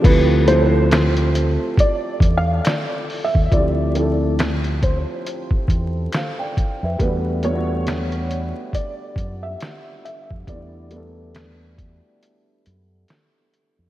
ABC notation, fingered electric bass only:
X:1
M:4/4
L:1/16
Q:"Swing 16ths" 1/4=69
K:Ephr
V:1 name="Fingered electric bass" clef=bass
D,,6- D,, z3 E,,2 z3 _E,, | D,,6- D,, z3 E,,2 z3 F,, | E,,6- E,, z3 ^F,,2 z3 =F,, | E,,6- E,, z3 ^F,,2 z3 =F,, |]